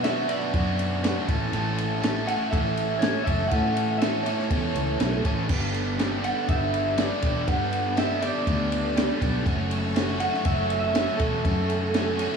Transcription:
Already playing: fingered electric bass B2, analog synth pad B4 D5 F#5 B5
0.03 overdriven electric guitar B2 F#3 B3 D4 F#4, clean electric guitar E5, snare, ride
0.28 overdriven electric guitar B2 F#3 B3 D4 F#4, clean electric guitar D5, ride
0.53 fingered electric bass F#2, overdriven electric guitar B2 F#3 B3 D4 F#4, kick, ride
0.79 ride
1.02 overdriven electric guitar B2 F#3 B3 D4 F#4, snare, ride
1.27 fingered electric bass A1, overdriven electric guitar A2 E3 A3 C#4 E4 A4, analog synth pad A4 E5 C#6, kick, ride
1.52 fingered electric bass A1, overdriven electric guitar A2 E3 A3 C#4 E4 A4, ride
1.78 ride
2.02 overdriven electric guitar A2 E3 A3 C#4 E4 A4, snare, ride
2.27 overdriven electric guitar A2 E3 A3 C#4 E4 A4, clean electric guitar F#5, ride
2.51 fingered electric bass A1, overdriven electric guitar A2 E3 A3 C#4 E4 A4, clean electric guitar E5, kick, ride
2.77 ride
2.99 overdriven electric guitar A2 E3 A3 A4, clean electric guitar C#5, snare, ride
3.03 overdriven electric guitar C#4 E4
3.24 fingered electric bass F#1, overdriven electric guitar A2 E3 A3 C#4 E4 A4, clean electric guitar E5, kick, ride
3.48 overdriven electric guitar A2 E3, fingered electric bass A2, clean electric guitar F#5, kick, ride
3.52 overdriven electric guitar A3 C#4 E4 A4
3.77 ride
3.98 overdriven electric guitar A2 E3 A3, clean electric guitar E5, ride
4.02 overdriven electric guitar C#4 E4 A4, snare
4.23 overdriven electric guitar A2 E3 A3 C#4 E4 A4, clean electric guitar C#5, ride
4.39 snare
4.50 fingered electric bass E2, overdriven electric guitar A2 E3 A3 C#4 E4 A4, kick, ride
4.75 fingered electric bass C#2, ride
5.00 fingered electric bass B1, overdriven electric guitar A2 E3 A3 C#4 E4 A4, snare, ride
5.24 fingered electric bass A1, overdriven electric guitar A2 E3 A3 C#4 E4 A4, kick, ride
5.48 fingered electric bass G1, overdriven electric guitar G2 D3 G3 B3 D4 G4, analog synth pad D5 G5 B5, kick, crash
5.74 ride
5.98 overdriven electric guitar G2 D3 G3 B3 D4 G4, snare, ride
6.22 overdriven electric guitar G2 D3 G3 B3 D4 G4, clean electric guitar F#5, ride
6.47 fingered electric bass G1, overdriven electric guitar G2 D3 G3 B3 D4 G4, clean electric guitar E5, kick, ride
6.74 ride
6.97 overdriven electric guitar G2 D3 G3 B3 D4 G4, clean electric guitar D5, snare, ride
7.21 fingered electric bass E1, overdriven electric guitar G2 D3 G3 B3 D4 G4, kick, ride
7.47 overdriven electric guitar G2 D3 G3 B3 D4 G4, fingered electric bass G2, clean electric guitar F#5, analog synth pad A5, kick, ride
7.73 ride
7.96 overdriven electric guitar G2 D3 G3 B3 D4 G4, clean electric guitar E5, snare, ride
8.21 overdriven electric guitar G2 D3 G3 B3 D4 G4, clean electric guitar D5, ride
8.46 fingered electric bass D2, overdriven electric guitar G2 D3 G3 B3 D4 G4, kick, ride
8.72 ride
8.95 overdriven electric guitar G2 D3 G3 B3 D4 G4, snare, ride
9.20 fingered electric bass B1, overdriven electric guitar G2 D3 G3 B3 D4 G4, kick, ride
9.45 fingered electric bass F#1, overdriven electric guitar F#2 C#3 F#3 A3 C#4 F#4, analog synth pad A4 E5 F#5 C#6, kick, ride
9.71 ride
9.95 overdriven electric guitar F#2 C#3 F#3 A3 C#4 F#4, snare, ride
10.20 overdriven electric guitar F#2 C#3 F#3 A3 C#4 F#4, clean electric guitar F#5, ride
10.34 snare
10.44 fingered electric bass F#1, overdriven electric guitar F#2 C#3 F#3 A3 C#4 F#4, clean electric guitar E5, kick, ride
10.70 ride
10.80 clean electric guitar E5
10.94 overdriven electric guitar F#2 C#3 F#3 A3 C#4 F#4, snare, ride
11.17 fingered electric bass E1, overdriven electric guitar F#2 C#3 F#3 A3 F#4, clean electric guitar A4, kick, ride
11.21 overdriven electric guitar C#4
11.44 overdriven electric guitar F#2 C#3 F#3 A3 C#4 F#4, fingered electric bass F#2, kick, ride
11.70 ride
11.94 overdriven electric guitar F#2 C#3 F#3 A3 C#4 F#4, snare, ride
12.19 overdriven electric guitar F#2 C#3 F#3 A3 C#4 F#4, ride
12.33 snare

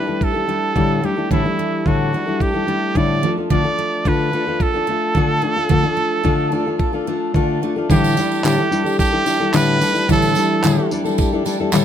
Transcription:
Already playing: steel-string acoustic guitar E3 A3 D4 G4, trumpet B4
0.07 steel-string acoustic guitar G3 D4 E4 A4
0.21 steel-string acoustic guitar G4, trumpet A4, kick
0.34 steel-string acoustic guitar G3 D4 E4 A4
0.47 steel-string acoustic guitar G3 A3 D4 E4 A4
0.75 steel-string acoustic guitar A2 D3 G3 D4 E4 A4, kick
1.02 steel-string acoustic guitar G3 A3 D4 E4 A4, trumpet G4
1.16 steel-string acoustic guitar G3 D4 E4 A4
1.30 steel-string acoustic guitar A2 D3 E3 G3 D4 E4 A4, trumpet E4, kick
1.44 steel-string acoustic guitar G3 D4 E4 A4
1.59 steel-string acoustic guitar A3
1.86 steel-string acoustic guitar A2 D3 G3 D4 E4 A4, trumpet F#4, kick
2.13 steel-string acoustic guitar G3 D4 E4 A4
2.26 steel-string acoustic guitar G3 D4 E4 A4
2.40 steel-string acoustic guitar G4, trumpet G4, kick
2.53 steel-string acoustic guitar G3 D4 E4 A4
2.67 steel-string acoustic guitar G3 A3 D4 E4 A4
2.95 steel-string acoustic guitar A2 D3 G3 D4 E4 A4, trumpet D5, kick
3.22 steel-string acoustic guitar F3 A3 D4 F4 A4
3.37 steel-string acoustic guitar D4 F4 A4
3.50 steel-string acoustic guitar D3 F3 A3 D4 F4 A4, trumpet D5, kick
3.64 steel-string acoustic guitar D4 F4 A4
3.79 steel-string acoustic guitar A3
4.05 steel-string acoustic guitar D3 A3 D4 F4 A4, trumpet B4, kick
4.32 steel-string acoustic guitar A3 D4 F4 A4
4.47 steel-string acoustic guitar D4 F4 A4
4.60 steel-string acoustic guitar F4, trumpet A4, kick
4.74 steel-string acoustic guitar D4 F4 A4
4.87 steel-string acoustic guitar A3 D4 F4 A4
5.15 steel-string acoustic guitar D3 A3 D4 F4 A4, kick
5.42 steel-string acoustic guitar A3 D4 F4
5.46 steel-string acoustic guitar A4
5.56 steel-string acoustic guitar D4 F4 A4
5.69 steel-string acoustic guitar D3 F3 A3 D4 F4 A4, kick
5.83 steel-string acoustic guitar D4 F4 A4
5.97 steel-string acoustic guitar A3
6.24 steel-string acoustic guitar D3 A3 D4 F4 A4, kick
6.52 steel-string acoustic guitar A3 D4 F4 A4
6.66 steel-string acoustic guitar D4 F4 A4
6.79 steel-string acoustic guitar F4, kick
6.93 steel-string acoustic guitar D4 F4 A4
7.07 steel-string acoustic guitar A3 D4 F4 A4
7.34 steel-string acoustic guitar D3 A3 D4 F4 A4, kick
7.62 steel-string acoustic guitar A3 D4 F4 A4
7.76 steel-string acoustic guitar D4 F4 A4
7.90 steel-string acoustic guitar A2 D3 E3 G3 D4 E4 A4, trumpet G4, kick, tambourine
8.04 tambourine
8.17 steel-string acoustic guitar G3 D4 E4 A4, tambourine
8.31 tambourine
8.44 steel-string acoustic guitar A2 D3 G3 D4 E4 G4 A4, trumpet G4, clap, tambourine
8.57 steel-string acoustic guitar G3 D4 E4 A4
8.71 steel-string acoustic guitar G3 D4 E4 A4, tambourine
8.84 steel-string acoustic guitar G3 D4 E4 A4, tambourine
8.99 trumpet G4, steel-string acoustic guitar G4, kick, tambourine
9.12 steel-string acoustic guitar G3 D4 E4 A4
9.25 steel-string acoustic guitar G3 D4 E4 A4, tambourine
9.40 steel-string acoustic guitar G3 D4 E4 A4
9.53 steel-string acoustic guitar A2 D3 G3 A3 D4 E4 A4, trumpet B4, clap, tambourine
9.80 steel-string acoustic guitar G3 D4 E4 A4, tambourine
9.93 steel-string acoustic guitar G3 D4 E4 A4, tambourine
10.08 steel-string acoustic guitar A2 D3 E3 G3 D4 E4 A4, trumpet A4, kick, tambourine
10.22 tambourine
10.35 steel-string acoustic guitar G3 D4 E4 A4, tambourine
10.63 steel-string acoustic guitar A2 D3 G3 D4 E4 G4 A4, clap, tambourine
10.78 steel-string acoustic guitar G3 D4 E4 A4
10.91 steel-string acoustic guitar G3 D4 E4 A4, tambourine
11.05 steel-string acoustic guitar G3 D4 E4 A4, tambourine
11.18 steel-string acoustic guitar G4, kick, tambourine
11.33 steel-string acoustic guitar G3 D4 E4 A4
11.45 steel-string acoustic guitar G3 D4 E4 A4, tambourine
11.60 steel-string acoustic guitar G3 D4 E4 A4
11.72 steel-string acoustic guitar A2 D3 G3 A3 D4 E4 A4, clap, tambourine

